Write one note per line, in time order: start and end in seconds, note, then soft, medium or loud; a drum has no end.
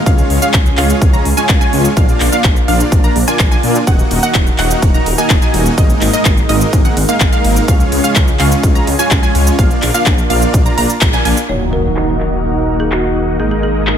0.06 0.21 C#2 loud
0.06 1.95 C#3 medium
0.06 0.39 G#3 medium
0.06 1.95 C#4 medium
0.06 0.39 C#4 medium
0.06 0.39 F4 medium
0.06 3.84 F4 medium
0.06 1.95 G#4 medium
0.06 0.39 C#5 medium
0.06 0.39 F5 medium
0.06 kick loud
0.06 closed hi-hat medium
0.06 shaker medium
0.18 closed hi-hat soft
0.18 shaker soft
0.30 0.38 C#2 medium
0.30 open hi-hat loud
0.42 0.61 G#3 medium
0.42 0.61 C#4 medium
0.42 0.61 F4 medium
0.42 0.61 C#5 medium
0.42 0.61 F5 loud
0.42 0.61 F5 medium
0.42 closed hi-hat medium
0.42 shaker medium
0.54 0.69 C#2 medium
0.54 kick loud
0.54 clap loud
0.54 closed hi-hat medium
0.54 shaker medium
0.66 closed hi-hat soft
0.66 shaker soft
0.77 0.93 C#2 medium
0.77 1.11 G#3 medium
0.77 1.11 C#4 medium
0.77 1.11 F4 medium
0.77 1.11 C#5 medium
0.77 1.11 F5 medium
0.77 clap medium
0.77 open hi-hat medium
0.90 closed hi-hat medium
0.90 shaker medium
1.02 1.17 C#2 medium
1.02 kick loud
1.02 closed hi-hat medium
1.02 shaker medium
1.13 1.26 G#3 medium
1.13 1.26 C#4 medium
1.13 1.26 F4 medium
1.13 1.26 C#5 medium
1.13 1.26 A#5 medium
1.13 closed hi-hat soft
1.13 shaker soft
1.25 1.33 C#2 loud
1.25 open hi-hat loud
1.37 1.58 G#3 loud
1.37 1.58 C#4 medium
1.37 1.58 F4 medium
1.37 1.58 C#5 medium
1.37 1.58 G#5 loud
1.37 closed hi-hat medium
1.37 shaker medium
1.49 1.57 C#2 medium
1.49 kick loud
1.49 clap loud
1.49 closed hi-hat medium
1.49 shaker medium
1.61 1.94 G#3 medium
1.61 1.94 C#4 medium
1.61 1.94 F4 medium
1.61 1.94 C#5 medium
1.61 1.94 G#5 loud
1.61 closed hi-hat soft
1.61 shaker soft
1.73 1.88 C#2 loud
1.73 open hi-hat loud
1.85 closed hi-hat medium
1.85 shaker medium
1.97 2.12 A#1 loud
1.97 3.85 A#3 medium
1.97 2.30 A#3 medium
1.97 2.30 D4 medium
1.97 3.85 D4 medium
1.97 2.30 F4 medium
1.97 2.30 D5 medium
1.97 2.30 F5 medium
1.97 kick loud
1.97 closed hi-hat medium
1.97 shaker medium
2.09 closed hi-hat soft
2.09 shaker soft
2.20 2.28 A#1 medium
2.20 clap medium
2.20 open hi-hat loud
2.32 2.52 A#3 medium
2.32 2.52 D4 medium
2.32 2.52 F4 medium
2.32 2.52 D5 medium
2.32 2.52 F5 loud
2.32 closed hi-hat medium
2.32 shaker medium
2.44 2.59 A#1 medium
2.44 kick loud
2.44 clap loud
2.44 closed hi-hat medium
2.44 shaker medium
2.56 closed hi-hat soft
2.56 shaker soft
2.68 2.83 A#1 medium
2.68 3.01 A#3 medium
2.68 3.01 D4 medium
2.68 3.01 F4 medium
2.68 3.01 D5 medium
2.68 3.01 F5 medium
2.68 open hi-hat medium
2.80 closed hi-hat medium
2.80 shaker medium
2.92 3.07 A#1 medium
2.92 kick loud
2.92 closed hi-hat medium
2.92 shaker medium
3.04 3.16 A#3 medium
3.04 3.16 D4 medium
3.04 3.16 F4 medium
3.04 3.16 D5 medium
3.04 3.16 A#5 medium
3.04 closed hi-hat soft
3.04 shaker soft
3.16 3.23 A#1 medium
3.16 open hi-hat loud
3.28 3.49 A#3 loud
3.28 3.49 D4 medium
3.28 3.49 F4 medium
3.28 3.49 D5 medium
3.28 3.49 G#5 loud
3.28 closed hi-hat medium
3.28 shaker medium
3.39 3.55 A#1 medium
3.39 kick loud
3.39 clap loud
3.39 closed hi-hat medium
3.39 shaker medium
3.51 3.84 A#3 medium
3.51 3.84 D4 medium
3.51 3.84 F4 medium
3.51 3.84 D5 medium
3.51 3.84 G#5 loud
3.51 closed hi-hat soft
3.51 shaker soft
3.63 3.78 A#2 medium
3.63 open hi-hat loud
3.75 closed hi-hat soft
3.75 shaker medium
3.87 4.02 D#1 loud
3.87 5.76 D#3 medium
3.87 4.20 A#3 medium
3.87 7.64 D#4 medium
3.87 4.20 D#4 medium
3.87 5.76 F#4 medium
3.87 4.20 F#4 medium
3.87 5.76 A#4 medium
3.87 4.20 D#5 medium
3.87 4.20 F#5 medium
3.87 kick loud
3.87 closed hi-hat medium
3.87 ride medium
3.87 shaker medium
3.99 closed hi-hat soft
3.99 shaker soft
4.11 4.19 D#1 medium
4.11 open hi-hat loud
4.11 ride medium
4.23 4.42 A#3 medium
4.23 4.42 D#4 medium
4.23 4.42 F#4 medium
4.23 4.42 D#5 medium
4.23 4.42 F#5 loud
4.23 closed hi-hat medium
4.23 shaker medium
4.34 4.50 D#1 medium
4.34 kick loud
4.34 clap loud
4.34 closed hi-hat medium
4.34 ride medium
4.34 shaker medium
4.47 closed hi-hat soft
4.47 shaker soft
4.58 4.74 D#1 medium
4.58 4.92 A#3 medium
4.58 4.92 D#4 medium
4.58 4.92 F#4 medium
4.58 4.92 D#5 medium
4.58 4.92 F#5 medium
4.58 clap medium
4.58 open hi-hat medium
4.58 ride medium
4.71 closed hi-hat medium
4.71 shaker medium
4.82 4.97 D#1 medium
4.82 kick loud
4.82 closed hi-hat medium
4.82 ride medium
4.82 shaker medium
4.94 5.07 A#3 medium
4.94 5.06 D#4 medium
4.94 5.07 F#4 medium
4.94 5.07 D#5 medium
4.94 5.06 A#5 medium
4.94 5.07 A#5 medium
4.94 closed hi-hat soft
4.94 shaker soft
5.06 5.14 D#1 medium
5.06 open hi-hat loud
5.06 ride medium
5.18 5.39 A#3 loud
5.18 5.39 D#4 medium
5.18 5.39 F#4 medium
5.18 5.39 D#5 medium
5.18 5.39 G#5 loud
5.18 closed hi-hat medium
5.18 shaker medium
5.30 5.38 D#1 medium
5.30 kick loud
5.30 clap loud
5.30 closed hi-hat medium
5.30 ride medium
5.30 shaker medium
5.42 5.75 A#3 medium
5.42 5.75 D#4 medium
5.42 5.75 F#4 medium
5.42 5.75 D#5 medium
5.42 5.75 G#5 loud
5.42 closed hi-hat soft
5.42 shaker soft
5.54 5.69 D#1 medium
5.54 open hi-hat loud
5.54 ride medium
5.66 closed hi-hat soft
5.66 shaker medium
5.78 5.93 G#1 loud
5.78 7.66 G#3 medium
5.78 6.11 G#3 medium
5.78 6.11 A#3 medium
5.78 7.66 A#3 medium
5.78 6.11 D#4 medium
5.78 6.11 A#4 medium
5.78 6.11 D#5 medium
5.78 kick loud
5.78 closed hi-hat medium
5.78 ride medium
5.78 shaker medium
5.90 closed hi-hat soft
5.90 shaker soft
6.01 6.09 G#1 medium
6.01 clap medium
6.01 open hi-hat loud
6.01 ride medium
6.13 6.33 G#3 medium
6.13 6.33 A#3 medium
6.13 6.33 D#4 medium
6.13 6.33 A#4 medium
6.13 6.33 D#5 loud
6.13 closed hi-hat medium
6.13 shaker medium
6.25 6.40 G#1 medium
6.25 kick loud
6.25 clap loud
6.25 closed hi-hat medium
6.25 ride medium
6.25 shaker medium
6.37 closed hi-hat soft
6.37 shaker soft
6.49 6.64 G#1 medium
6.49 6.82 G#3 medium
6.49 6.82 A#3 medium
6.49 6.82 D#4 medium
6.49 6.82 A#4 medium
6.49 6.82 D#5 medium
6.49 open hi-hat medium
6.49 ride medium
6.61 closed hi-hat medium
6.61 shaker medium
6.73 6.88 G#1 medium
6.73 kick loud
6.73 closed hi-hat medium
6.73 ride medium
6.73 shaker medium
6.85 6.97 G#3 medium
6.85 6.97 A#3 medium
6.85 6.97 D#4 medium
6.85 6.97 A#4 medium
6.85 6.97 F#5 medium
6.85 closed hi-hat soft
6.85 shaker soft
6.97 7.04 G#1 medium
6.97 open hi-hat loud
6.97 ride medium
7.09 7.30 G#3 loud
7.09 7.30 A#3 medium
7.09 7.30 D#4 medium
7.09 7.30 A#4 medium
7.09 7.30 F5 loud
7.09 closed hi-hat medium
7.09 shaker medium
7.20 7.28 G#1 medium
7.20 kick loud
7.20 clap loud
7.20 closed hi-hat medium
7.20 ride medium
7.20 shaker medium
7.33 7.65 G#3 medium
7.33 7.65 A#3 medium
7.33 7.65 D#4 medium
7.33 7.65 A#4 medium
7.33 7.65 F5 loud
7.33 closed hi-hat soft
7.33 shaker soft
7.44 7.59 G#1 loud
7.44 open hi-hat medium
7.44 ride medium
7.56 closed hi-hat medium
7.56 shaker medium
7.68 7.83 C#2 loud
7.68 9.57 C#3 medium
7.68 8.01 G#3 medium
7.68 9.57 C#4 medium
7.68 8.01 C#4 medium
7.68 9.57 F4 medium
7.68 8.01 F4 medium
7.68 9.57 G#4 medium
7.68 8.01 C#5 medium
7.68 8.01 F5 medium
7.68 kick loud
7.68 closed hi-hat medium
7.68 ride medium
7.68 shaker medium
7.80 closed hi-hat soft
7.80 shaker soft
7.92 8.00 C#2 medium
7.92 open hi-hat loud
7.92 ride medium
8.04 8.23 G#3 medium
8.04 8.23 C#4 medium
8.04 8.23 F4 medium
8.04 8.23 C#5 medium
8.04 8.23 F5 loud
8.04 closed hi-hat medium
8.04 shaker medium
8.16 8.31 C#2 medium
8.16 kick loud
8.16 clap loud
8.16 closed hi-hat medium
8.16 ride medium
8.16 shaker medium
8.28 closed hi-hat soft
8.28 shaker soft
8.39 8.55 C#2 medium
8.39 8.72 G#3 medium
8.39 8.73 C#4 medium
8.39 8.73 F4 medium
8.39 8.73 C#5 medium
8.39 8.72 F5 medium
8.39 8.73 F5 medium
8.39 clap medium
8.39 open hi-hat medium
8.39 ride medium
8.52 closed hi-hat medium
8.52 shaker medium
8.63 8.78 C#2 medium
8.63 kick loud
8.63 closed hi-hat medium
8.63 ride medium
8.63 shaker medium
8.75 8.87 G#3 medium
8.75 8.87 C#4 medium
8.75 8.87 F4 medium
8.75 8.87 C#5 medium
8.75 8.87 A#5 medium
8.75 closed hi-hat soft
8.75 shaker soft
8.87 8.95 C#2 medium
8.87 open hi-hat loud
8.87 ride medium
8.99 9.20 G#3 loud
8.99 9.20 C#4 medium
8.99 9.20 F4 medium
8.99 9.20 C#5 medium
8.99 9.20 G#5 loud
8.99 closed hi-hat medium
8.99 shaker medium
9.11 9.19 C#2 medium
9.11 kick loud
9.11 clap loud
9.11 closed hi-hat medium
9.11 ride medium
9.11 shaker medium
9.23 9.56 G#3 medium
9.23 9.56 C#4 medium
9.23 9.56 F4 medium
9.23 9.56 C#5 medium
9.23 9.56 G#5 loud
9.23 closed hi-hat soft
9.23 shaker soft
9.35 9.50 C#2 medium
9.35 open hi-hat medium
9.35 ride medium
9.47 closed hi-hat medium
9.47 shaker medium
9.59 9.74 A#1 loud
9.59 9.91 A#3 medium
9.59 11.47 A#3 medium
9.59 9.91 D4 medium
9.59 11.47 D4 medium
9.59 9.91 F4 medium
9.59 11.47 F4 medium
9.59 9.92 D5 medium
9.59 9.91 F5 medium
9.59 9.92 F5 medium
9.59 kick loud
9.59 closed hi-hat medium
9.59 ride medium
9.59 shaker medium
9.71 closed hi-hat soft
9.71 shaker soft
9.82 9.90 A#1 medium
9.82 clap medium
9.82 open hi-hat loud
9.82 ride medium
9.94 10.14 A#3 medium
9.94 10.14 D4 medium
9.94 10.14 F4 medium
9.94 10.14 D5 medium
9.94 10.14 F5 loud
9.94 closed hi-hat medium
9.94 shaker medium
10.06 10.21 A#1 medium
10.06 kick loud
10.06 clap loud
10.06 closed hi-hat medium
10.06 ride medium
10.06 shaker medium
10.18 closed hi-hat soft
10.18 shaker soft
10.30 10.45 A#1 medium
10.30 10.63 A#3 medium
10.30 10.63 D4 medium
10.30 10.63 F4 medium
10.30 10.63 D5 medium
10.30 10.63 F5 medium
10.30 open hi-hat medium
10.30 ride medium
10.42 closed hi-hat medium
10.42 shaker medium
10.54 10.69 A#1 medium
10.54 kick loud
10.54 closed hi-hat medium
10.54 ride medium
10.54 shaker medium
10.66 10.75 A#3 medium
10.66 10.75 D4 medium
10.66 10.75 F4 medium
10.66 10.75 D5 medium
10.66 10.75 A#5 medium
10.66 closed hi-hat soft
10.66 shaker soft
10.78 10.85 A#1 medium
10.78 10.90 A#3 medium
10.78 10.90 D4 medium
10.78 10.90 F4 medium
10.78 10.90 D5 medium
10.78 10.90 A#5 loud
10.78 open hi-hat loud
10.78 ride medium
10.90 closed hi-hat medium
10.90 shaker medium
11.01 11.16 A#1 loud
11.01 kick loud
11.01 clap loud
11.01 closed hi-hat medium
11.01 ride medium
11.01 shaker medium
11.13 11.22 A#3 loud
11.13 11.22 D4 medium
11.13 11.22 F4 medium
11.13 11.22 D5 medium
11.13 11.22 G#5 loud
11.13 closed hi-hat soft
11.13 shaker soft
11.25 11.33 A#1 medium
11.25 11.37 A#3 medium
11.25 11.37 D4 medium
11.25 11.37 F4 medium
11.25 11.37 D5 medium
11.25 11.37 G#5 medium
11.25 open hi-hat medium
11.25 ride medium
11.37 closed hi-hat medium
11.37 shaker medium
11.49 13.37 D#1 medium
11.49 13.38 D#3 medium
11.49 13.37 A#3 medium
11.49 13.98 D#4 medium
11.49 13.37 D#4 medium
11.49 13.38 F#4 medium
11.49 13.37 F#4 medium
11.49 13.38 A#4 medium
11.49 11.63 C#5 medium
11.49 13.37 D#5 medium
11.49 13.37 F#5 medium
11.49 crash medium
11.49 impact medium
11.73 11.86 A#4 medium
11.96 clap loud
12.20 clap medium
12.80 12.90 G#4 medium
12.92 13.37 F#4 medium
12.92 clap loud
13.40 13.98 G#1 medium
13.40 13.98 G#3 medium
13.40 13.98 A#3 medium
13.40 13.98 D#4 medium
13.40 13.47 G#4 medium
13.40 13.98 A#4 medium
13.40 13.98 D#5 medium
13.51 13.59 G#4 medium
13.63 13.98 G#4 medium
13.87 clap loud